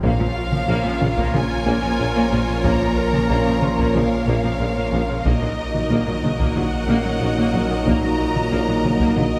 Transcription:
0.03 tuba A#1, double bass section A#1, detuned saw bass A#1, trombone section A#2 F3, cello section A#2, analog synth pad F3 A#3 C#4 A#4, synth arpeggio sound A#3, viola section A#3 F4, french horn section A#3 C#4, violin section A#4 C#5 F5, taiko
0.19 cello section A#2, viola section F3, synth arpeggio sound F4
0.36 grand piano F4 F5
0.52 cello section A#2, viola section F3, synth arpeggio sound C#4, taiko mid
0.68 double bass section A#1, tuba A#1, cello section A#2, synth arpeggio sound A#3, viola section A#3
0.85 cello section A#2, viola section F3, synth arpeggio sound C#4
1.01 tuba A#1, double bass section A#1, cello section A#2, viola section C#3, synth arpeggio sound C#4, taiko mid
1.18 cello section A#2, synth arpeggio sound A#3, viola section A#3, taiko
1.34 tuba A#1, double bass section A#1, cello section A#2, viola section F3, synth arpeggio sound A#4, grand piano F5, violin section G#5, taiko mid
1.66 tuba A#1, double bass section A#1, cello section A#2, synth arpeggio sound A#3, viola section A#3
1.82 cello section A#2, viola section F3, synth arpeggio sound C#4
1.99 tuba A#1, double bass section A#1, cello section A#2, viola section C#3, synth arpeggio sound F4
2.15 cello section A#2, synth arpeggio sound A#3, viola section A#3
2.32 tuba A#1, double bass section A#1, cello section A#2, viola section F3, synth arpeggio sound C#4
2.47 cello section A#2, viola section C#3, synth arpeggio sound F4
2.64 tuba A#1, double bass section A#1, cello section A#2, synth arpeggio sound A#3, viola section A#3, violin section A#5, taiko
2.80 cello section A#2, viola section F3, synth arpeggio sound F4
2.97 grand piano A#4
3.13 cello section A#2, viola section F3, synth arpeggio sound C#4, taiko mid
3.29 tuba A#1, double bass section A#1, cello section A#2, synth arpeggio sound A#3, viola section A#3
3.46 cello section A#2, viola section F3, synth arpeggio sound C#4
3.62 double bass section A#1, tuba A#1, cello section A#2, viola section C#3, synth arpeggio sound C#4, grand piano C6, taiko mid
3.78 cello section A#2, synth arpeggio sound A#3, viola section A#3, taiko
3.94 double bass section A#1, tuba A#1, cello section A#2, viola section F3, synth arpeggio sound A#4, violin section F5, taiko mid
4.27 double bass section A#1, tuba A#1, cello section A#2, synth arpeggio sound A#3, viola section A#3
4.43 cello section A#2, viola section F3, synth arpeggio sound C#4
4.60 double bass section A#1, tuba A#1, cello section A#2, viola section C#3, synth arpeggio sound F4
4.76 cello section A#2, synth arpeggio sound A#3, viola section A#3
4.92 double bass section A#1, tuba A#1, cello section A#2, viola section F3, synth arpeggio sound C#4
5.09 cello section A#2, viola section C#3, synth arpeggio sound F4
5.25 double bass section A#1, tuba A#1, detuned saw bass A#1, trombone section A#2 F#3, cello section A#2, synth arpeggio sound D#3, analog synth pad F#3 A#3 D#4 A#4, viola section A#3 F#4, french horn section A#3 D#4, violin section A#4 D#5, taiko
5.42 cello section A#2, viola section F#3, synth arpeggio sound A#3
5.74 cello section A#2, viola section F#3, synth arpeggio sound F#3, taiko mid
5.90 double bass section A#1, tuba A#1, cello section A#2, synth arpeggio sound D#3, viola section A#3
6.07 cello section A#2, viola section F#3, synth arpeggio sound F#3
6.23 tuba A#1, double bass section A#1, cello section A#2, viola section D#3, synth arpeggio sound F#3, taiko mid
6.39 cello section A#2, synth arpeggio sound D#3, viola section A#3, taiko
6.56 double bass section A#1, tuba A#1, cello section A#2, viola section F#3, synth arpeggio sound D#4, violin section F#5, taiko mid
6.88 tuba A#1, double bass section A#1, cello section A#2, synth arpeggio sound D#3, viola section A#3, grand piano C#4 C#5
7.05 cello section A#2, viola section F#3, synth arpeggio sound F#3
7.21 tuba A#1, double bass section A#1, cello section A#2, viola section D#3, synth arpeggio sound A#3
7.37 cello section A#2, synth arpeggio sound D#3, viola section A#3
7.53 tuba A#1, double bass section A#1, cello section A#2, synth arpeggio sound F#3, viola section F#3
7.69 cello section A#2, viola section D#3, synth arpeggio sound A#3
7.86 double bass section A#1, tuba A#1, cello section A#2, synth arpeggio sound D#3, viola section A#3, violin section A#5, taiko
8.02 cello section A#2, viola section F#3, synth arpeggio sound A#3
8.18 grand piano D#4 D#5
8.35 cello section A#2, viola section F#3, synth arpeggio sound F#3, taiko mid
8.51 double bass section A#1, tuba A#1, cello section A#2, synth arpeggio sound D#3, viola section A#3
8.68 cello section A#2, viola section F#3, synth arpeggio sound F#3
8.83 double bass section A#1, tuba A#1, cello section A#2, viola section D#3, synth arpeggio sound F#3, taiko mid
9.00 cello section A#2, synth arpeggio sound D#3, viola section A#3, taiko
9.16 double bass section A#1, tuba A#1, cello section A#2, viola section F#3, synth arpeggio sound D#4, violin section D#5, taiko mid

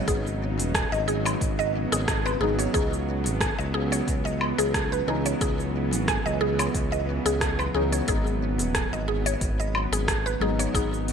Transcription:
Already playing: synth drone C#3 F#3 B3 D#4, synth stab F#3 G#3 B3 D#4
0.06 analog synth bass G#1, synth stab F#3 G#3 B3, synth pluck G#4, kick, open hi-hat, cabasa
0.10 synth stab D#4
0.27 cabasa
0.58 analog synth bass D#1, open hi-hat, cabasa
0.74 synth pluck G#5, kick, cross-stick, open hi-hat, cabasa
0.92 analog synth bass G#1, synth pluck D#5, cabasa
1.08 synth pluck G#4, open hi-hat
1.25 synth pluck C#5, open hi-hat, cabasa, low woodblock
1.41 analog synth bass G#1, kick, open hi-hat, cabasa
1.59 synth pluck D#5, cabasa
1.92 analog synth bass G#1, synth pluck G#4, open hi-hat, cabasa
2.08 kick, cross-stick, open hi-hat, cabasa
2.26 synth pluck B4, cabasa, low woodblock
2.40 analog synth bass G#1, synth stab F#3 G#3 B3 D#4, synth pluck G#4
2.59 synth pluck C#5, open hi-hat, cabasa
2.73 analog synth bass C#2, synth stab E3 G#3 C#4, synth pluck G#4, kick, open hi-hat, cabasa
2.77 synth stab D#4
2.93 cabasa
3.00 synth drone E3
3.25 analog synth bass G#1, open hi-hat, cabasa
3.41 synth pluck G#5, kick, cross-stick, open hi-hat, cabasa
3.58 analog synth bass C#2, synth pluck D#5, cabasa
3.74 synth pluck G#4
3.92 synth pluck C#5, open hi-hat, cabasa
4.08 analog synth bass C#2, kick, open hi-hat, cabasa
4.25 synth pluck D#5, cabasa
4.41 low woodblock
4.58 analog synth bass C#2, synth pluck G#4, open hi-hat, cabasa
4.74 kick, cross-stick, open hi-hat, cabasa
4.92 synth pluck B4, cabasa
5.07 analog synth bass C#2, synth stab E3 G#3 C#4 D#4, synth pluck G#4
5.26 synth pluck C#5, open hi-hat, cabasa
5.40 analog synth bass C#2, synth stab E3 G#3 C#4 D#4, synth pluck G#4, kick, open hi-hat, cabasa
5.60 cabasa
5.92 analog synth bass G#1, open hi-hat, cabasa
6.08 synth pluck G#5, kick, cross-stick, open hi-hat, cabasa
6.26 analog synth bass C#2, synth pluck D#5, cabasa
6.41 synth pluck G#4
6.59 synth pluck C#5, open hi-hat, cabasa, low woodblock
6.74 analog synth bass C#2, kick, open hi-hat, cabasa
6.92 synth pluck D#5, cabasa
7.26 analog synth bass C#2, synth pluck G#4, open hi-hat, cabasa
7.41 kick, cross-stick, open hi-hat, cabasa
7.59 synth pluck B4, cabasa, low woodblock
7.74 analog synth bass C#2, synth stab E3 G#3 C#4 D#4, synth pluck G#4
7.92 synth pluck C#5, open hi-hat, cabasa
8.07 analog synth bass G#1, synth drone C#3, synth stab F#3 G#3 B3, synth pluck G#4, kick, open hi-hat, cabasa
8.11 synth stab D#4
8.27 cabasa
8.59 analog synth bass D#1, open hi-hat, cabasa
8.75 synth pluck G#5, kick, cross-stick, open hi-hat, cabasa
8.92 analog synth bass G#1, synth pluck D#5, cabasa
8.97 synth drone D#4
9.08 synth pluck G#4
9.26 synth pluck C#5, open hi-hat, cabasa
9.41 analog synth bass G#1, kick, open hi-hat, cabasa
9.60 synth pluck D#5, cabasa
9.75 low woodblock
9.92 analog synth bass G#1, synth pluck G#4, open hi-hat, cabasa
10.08 kick, cross-stick, open hi-hat, cabasa
10.26 synth pluck B4, cabasa
10.40 analog synth bass G#1, synth stab F#3 G#3 B3 D#4, synth pluck G#4
10.59 synth pluck C#5, open hi-hat, cabasa
10.73 analog synth bass G#1, synth stab F#3 G#3 B3 D#4, synth pluck G#4, kick, open hi-hat, cabasa
10.94 cabasa
11.08 open hi-hat

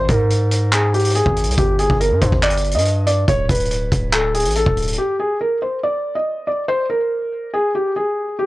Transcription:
0.09 808-style bass G#2, felt piano A#4, kick, closed hi-hat
0.30 closed hi-hat
0.51 closed hi-hat
0.72 felt piano G#4, clap, closed hi-hat
0.94 felt piano G4, closed hi-hat
0.99 closed hi-hat
1.05 closed hi-hat
1.10 closed hi-hat
1.15 felt piano G#4, closed hi-hat
1.26 808-style bass G#1, kick
1.36 closed hi-hat, open hi-hat
1.44 808-style bass C2, closed hi-hat
1.51 closed hi-hat
1.58 808-style bass G1, felt piano G4, kick, closed hi-hat
1.79 felt piano G#4, closed hi-hat
1.90 808-style bass G1, kick
2.00 felt piano A#4, closed hi-hat
2.11 808-style bass G2
2.21 808-style bass G2, felt piano C5, kick, closed hi-hat
2.32 808-style bass G1, kick
2.43 felt piano D5, clap, closed hi-hat
2.50 closed hi-hat
2.57 closed hi-hat
2.64 closed hi-hat
2.71 808-style bass G2, felt piano D#5, closed hi-hat
2.78 closed hi-hat
2.85 closed hi-hat
3.07 felt piano D5, closed hi-hat
3.28 808-style bass D1, felt piano C#5, kick, closed hi-hat
3.49 808-style bass D1, felt piano B4, kick, closed hi-hat
3.55 closed hi-hat
3.60 closed hi-hat
3.65 closed hi-hat
3.71 closed hi-hat
3.92 808-style bass D1, kick, closed hi-hat
4.13 felt piano A4, clap, closed hi-hat
4.34 felt piano G#4, closed hi-hat
4.40 closed hi-hat
4.45 808-style bass A1, closed hi-hat
4.50 closed hi-hat
4.55 felt piano A4, closed hi-hat
4.66 808-style bass D1, kick
4.77 closed hi-hat, open hi-hat
4.82 closed hi-hat
4.88 closed hi-hat
4.93 closed hi-hat
4.98 felt piano G4
5.20 felt piano G#4
5.41 felt piano A#4
5.62 felt piano C5
5.83 felt piano D5
6.15 felt piano D#5
6.47 felt piano D5
6.68 felt piano C5
6.90 felt piano A#4
7.54 felt piano G#4
7.75 felt piano G4
7.96 felt piano G#4
8.39 felt piano G4

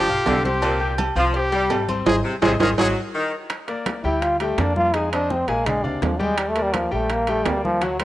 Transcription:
Already playing: trumpet G4
0.08 upright bass B1, grand piano F4 F5 F6, high conga
0.26 upright bass C2, saxophone section D3, cowbell, high conga, low timbale, low agogo
0.44 grand piano C4 C5 C6, trumpet G4, cowbell, high conga
0.62 saxophone section A#2, cowbell, high conga, low agogo
0.80 grand piano G4 G5 G6, high conga
0.98 cowbell, high conga, low timbale, low agogo
1.16 upright bass C2, saxophone section F3, grand piano C4 C5 C6, trumpet F4, high conga, low agogo
1.34 trumpet G4, cowbell, high conga
1.52 grand piano G3 G4 G5, saxophone section G3, cowbell, high conga
1.70 upright bass G#1, cowbell, high conga, low timbale, low agogo
1.88 grand piano C4 C5 C6, high conga, low agogo
2.06 upright bass G#1, grand piano G#4 C5 D#5, trumpet G#4, cowbell, high conga, high timbale
2.24 saxophone section C3
2.42 upright bass G#1, saxophone section C3, grand piano G#4 C5 D#5, trumpet G#4, cowbell, high conga, high timbale
2.60 upright bass G#1, saxophone section D#3, grand piano G#4 C5 D#5, trumpet G#4, cowbell, high conga, high timbale
2.78 upright bass G#1, saxophone section F#3, grand piano G#4 C5 D#5, trumpet G#4, cowbell, high conga, high timbale
3.15 saxophone section D#3
3.50 high bongo, high conga, high timbale
3.68 grand piano A#3 A#4 D5, high conga, high timbale
3.86 high bongo, high conga, high timbale, low timbale
4.04 upright bass D2, grand piano G3 G4 G5, trombone E4, high conga
4.22 trombone F4, high bongo, high conga, high timbale
4.40 grand piano G3 G4 G5, trombone A3, high conga, high timbale
4.58 upright bass F2, grand piano A#3 A#4 D5, trombone D4, high bongo, low bongo, high conga, high timbale, low timbale
4.76 trombone F4, high conga
4.94 grand piano G#3 G#4 G#5, trombone D#4, high bongo, high timbale
5.12 grand piano C4 C5 D#5, trombone D4, high bongo, high conga, high timbale
5.30 trombone C4, high bongo, high conga, low timbale
5.47 upright bass A#1, grand piano G#3 G#4 G#5, trombone A#3, high conga, high timbale
5.66 trombone G#3, grand piano D4 D5 F5, high bongo, high conga, low conga, high timbale
5.84 upright bass D2, trombone C3, grand piano D4 D5 F5, high bongo, high conga, low conga
6.02 upright bass D#2, trombone F3, high bongo, low bongo, high conga, high timbale, low timbale
6.20 grand piano G3 G4 G5, trombone G#3, high bongo, high conga
6.38 trombone G3, high bongo, high timbale
6.49 trombone A3
6.56 grand piano A#3 A#4 D5, high conga, high timbale
6.62 trombone G3
6.74 trombone F3, high bongo, high conga, high timbale, low timbale
6.91 upright bass A#1, grand piano G3 G4 G5, trombone A3, high conga
7.10 trombone A#3, high bongo, high conga, high timbale
7.27 grand piano G3 G4 G5, trombone A3, high conga, high timbale
7.45 upright bass D2, trombone G3, grand piano A#3 A#4 D5, high bongo, low bongo, high timbale, low timbale
7.65 trombone F3, high conga
7.81 grand piano F#3 F#4 F#5, trombone F#3, high bongo, high timbale
7.99 trombone G3, grand piano A3 A4 C5, high bongo, high conga, high timbale

